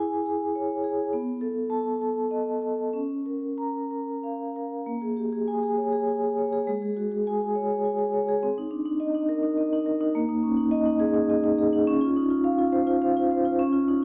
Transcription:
0.00 1.08 E4 medium
0.00 0.14 G#4 soft
0.00 0.43 G#5 medium
0.26 0.72 G#4 soft
0.55 1.01 C#5 soft
0.84 1.13 G#4 soft
1.13 2.91 B3 medium
1.41 1.89 A4 medium
1.70 2.19 A5 medium
2.01 2.50 A4 soft
2.31 2.81 D#5 soft
2.62 2.94 A4 soft
2.93 4.83 C#4 soft
3.26 3.78 A#4 soft
3.58 4.10 A#5 medium
3.91 4.43 A#4 soft
4.23 4.75 F5 soft
4.56 4.87 A#4 soft
4.86 6.62 A#3 medium
5.02 5.26 G#4 soft
5.17 5.32 G4 soft
5.33 5.57 G#4 soft
5.48 5.72 G#5 medium
5.63 5.87 G#4 soft
5.78 6.02 C#5 soft
5.93 6.16 G#4 soft
6.07 6.31 G#5 soft
6.23 6.46 G#4 soft
6.38 6.61 C#5 soft
6.53 6.67 G#4 soft
6.67 8.40 G#3 medium
6.82 7.05 G#4 soft
6.97 7.11 F#4 soft
7.12 7.35 G#4 soft
7.27 7.50 G#5 medium
7.41 7.65 G#4 soft
7.56 7.79 C#5 medium
7.71 7.94 G#4 soft
7.85 8.08 G#5 medium
7.99 8.23 G#4 medium
8.14 8.37 C#5 medium
8.29 8.43 G#4 medium
8.43 10.12 C4 medium
8.58 8.81 D#4 soft
8.71 8.86 D4 soft
8.86 9.09 D#4 medium
9.00 9.24 D#5 medium
9.15 9.38 D#4 medium
9.29 9.52 A#4 medium
9.43 9.67 D#4 medium
9.58 9.81 D#5 medium
9.73 9.96 D#4 medium
9.86 10.10 A#4 medium
10.01 10.16 D#4 medium
10.15 11.85 A#3 medium
10.29 10.53 D#4 medium
10.43 10.58 C#4 medium
10.57 10.81 D#4 medium
10.71 10.95 D#5 medium
10.86 11.10 D#4 medium
11.00 11.24 G#4 medium
11.14 11.39 D#4 medium
11.30 11.54 D#5 medium
11.44 11.68 D#4 medium
11.59 11.83 G#4 medium
11.73 11.88 D#4 medium
11.87 13.55 C#4 medium
12.01 12.25 F4 medium
12.16 12.31 D#4 medium
12.30 12.53 F4 medium
12.44 12.68 F5 medium
12.59 12.82 F4 medium
12.73 12.96 C5 medium
12.87 13.10 F4 medium
13.02 13.25 F5 medium
13.17 13.40 F4 medium
13.31 13.54 C5 medium
13.45 13.60 F4 medium
13.59 14.04 C#4 medium
13.73 13.96 F4 medium
13.88 14.03 D#4 medium

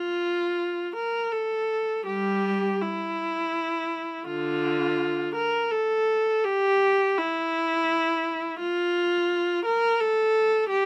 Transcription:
0.00 0.91 F4 medium
0.96 1.31 A#4 medium
1.32 2.06 A4 medium
2.06 2.77 G3 medium
2.06 2.79 G4 medium
2.81 4.28 E4 medium
4.27 5.31 D3 medium
4.27 5.33 F4 medium
5.35 5.70 A#4 medium
5.71 6.43 A4 medium
6.44 7.16 G4 medium
7.18 8.60 E4 medium
8.59 9.64 F4 medium
9.65 10.00 A#4 medium
10.00 10.71 A4 medium
10.69 10.86 G4 medium

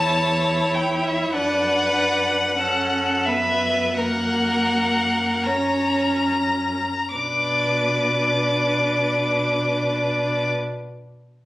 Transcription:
0.00 1.33 E2 medium
0.00 1.35 E4 medium
0.00 1.36 C#5 medium
0.00 0.76 A5 medium
0.74 1.05 G5 medium
1.03 1.33 E5 medium
1.33 6.82 F#2 soft
1.33 1.95 D4 medium
1.33 2.60 B4 medium
1.33 3.27 F#5 medium
1.95 2.58 D4 medium
2.59 3.29 C#4 medium
2.59 3.30 A4 medium
3.26 3.98 B3 soft
3.26 3.99 B4 medium
3.26 3.95 E5 medium
3.94 5.48 A#3 soft
3.94 5.49 A#4 soft
3.94 5.45 F#5 medium
5.44 6.86 C#4 soft
5.44 6.31 C#5 soft
5.44 7.13 A#5 medium
7.14 10.49 B2 soft
7.14 10.51 D4 soft
7.14 10.50 B4 soft
7.14 10.49 D6 soft

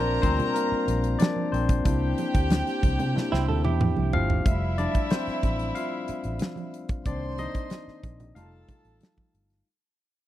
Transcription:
0.00 0.17 A#1 loud
0.00 0.22 C4 medium
0.00 1.21 D4 medium
0.00 0.24 F4 medium
0.00 1.49 A#4 loud
0.00 0.21 C5 loud
0.00 1.19 D5 loud
0.00 1.88 F5 loud
0.00 1.49 A#5 loud
0.22 0.37 D2 loud
0.22 1.16 G3 medium
0.22 0.55 A#3 medium
0.22 0.54 C4 medium
0.22 1.17 F4 medium
0.22 0.56 C5 medium
0.22 kick medium
0.22 closed hi-hat medium
0.22 muted conga medium
0.39 closed hi-hat medium
0.39 low conga medium
0.54 1.17 A#3 medium
0.54 1.22 A#4 medium
0.54 closed hi-hat medium
0.72 muted fingered electric bass stroke soft
0.88 1.15 A#1 medium
0.88 closed hi-hat medium
0.88 muted conga soft
1.04 closed hi-hat medium
1.19 1.51 D4 medium
1.19 1.53 D5 medium
1.19 snare loud
1.19 closed hi-hat medium
1.19 high conga medium
1.36 high conga medium
1.52 1.80 A#1 loud
1.52 3.45 C4 medium
1.52 3.44 C5 medium
1.52 closed hi-hat medium
1.69 kick loud
1.69 closed hi-hat medium
1.84 2.12 C2 loud
1.84 2.78 A#3 medium
1.84 2.79 D4 medium
1.84 2.79 E4 medium
1.84 4.09 G4 loud
1.84 4.09 G5 loud
1.84 kick loud
1.84 closed hi-hat medium
1.84 muted conga soft
2.18 closed hi-hat medium
2.18 muted conga medium
2.35 2.61 D2 medium
2.35 kick medium
2.35 closed hi-hat medium
2.50 snare loud
2.50 closed hi-hat loud
2.50 high conga medium
2.67 snare soft
2.67 closed hi-hat soft
2.83 2.97 C2 loud
2.83 kick medium
2.83 closed hi-hat medium
2.83 muted conga medium
2.99 3.13 C3 medium
2.99 closed hi-hat soft
2.99 low conga medium
3.14 3.44 A#3 soft
3.14 3.45 D4 soft
3.14 3.45 E4 medium
3.14 snare medium
3.14 low conga medium
3.32 3.49 C2 medium
3.32 3.48 C4 medium
3.32 3.47 E4 medium
3.32 snare medium
3.48 3.62 D2 medium
3.48 3.64 A4 medium
3.48 low conga medium
3.64 3.92 E2 medium
3.64 4.42 E4 medium
3.64 4.42 G4 medium
3.64 high tom medium
3.81 mid tom medium
3.81 high conga medium
3.97 4.11 C2 medium
3.97 high conga medium
4.13 4.40 G1 medium
4.13 4.75 F3 medium
4.13 4.74 F5 loud
4.13 floor tom loud
4.30 floor tom loud
4.45 4.86 F1 loud
4.45 5.39 G3 medium
4.45 5.39 A3 soft
4.45 6.70 E4 loud
4.45 5.40 E5 medium
4.45 6.70 E5 loud
4.45 kick loud
4.45 closed hi-hat medium
4.45 muted conga soft
4.78 4.94 D4 medium
4.78 4.93 D5 medium
4.78 closed hi-hat medium
4.78 muted conga medium
4.94 kick medium
4.94 closed hi-hat medium
5.10 5.73 C4 medium
5.10 5.78 C5 medium
5.10 snare loud
5.10 closed hi-hat medium
5.10 high conga medium
5.27 muted fingered electric bass stroke soft
5.27 snare soft
5.27 closed hi-hat soft
5.43 5.70 A1 medium
5.43 kick medium
5.43 closed hi-hat medium
5.43 muted conga medium
5.59 closed hi-hat medium
5.75 6.70 F4 medium
5.75 6.69 F5 medium
5.75 closed hi-hat medium
6.08 muted fingered electric bass stroke soft
6.08 closed hi-hat medium
6.08 muted conga soft
6.24 6.38 A1 medium
6.24 closed hi-hat soft
6.39 snare loud
6.39 closed hi-hat medium
6.39 high conga medium
6.56 closed hi-hat soft
6.56 high conga medium
6.74 closed hi-hat medium
6.89 kick loud
6.89 closed hi-hat medium
7.05 7.46 C2 loud
7.05 8.00 D#3 medium
7.05 8.00 A#3 medium
7.05 8.00 C4 medium
7.05 7.37 D4 medium
7.05 8.02 C5 loud
7.05 7.40 D5 medium
7.05 8.02 C6 loud
7.05 kick loud
7.05 closed hi-hat medium
7.05 muted conga soft
7.38 8.33 D#4 medium
7.38 8.32 D#5 medium
7.38 closed hi-hat medium
7.38 muted conga medium
7.54 kick medium
7.54 closed hi-hat medium
7.70 snare loud
7.70 closed hi-hat medium
7.70 high conga medium
7.88 muted fingered electric bass stroke soft
7.88 snare soft
8.03 8.30 A#1 medium
8.03 kick medium
8.03 closed hi-hat medium
8.03 muted conga medium
8.20 closed hi-hat medium
8.20 low conga medium
8.35 8.63 F1 loud
8.35 8.79 G3 medium
8.35 8.80 A3 soft
8.35 8.80 D#4 medium
8.35 8.98 F4 medium
8.35 9.32 A4 medium
8.35 8.97 F5 medium
8.35 9.32 A5 loud
8.35 closed hi-hat medium
8.35 low conga medium
8.69 muted fingered electric bass stroke soft
8.69 kick medium
8.69 closed hi-hat medium
8.69 muted conga soft
8.69 low conga medium
8.85 8.98 A1 medium
8.85 closed hi-hat soft
9.01 snare loud
9.01 closed hi-hat medium
9.01 high conga medium
9.17 kick medium
9.17 high conga medium
9.34 9.61 G1 medium
9.34 closed hi-hat medium
9.50 snare soft
9.50 closed hi-hat medium

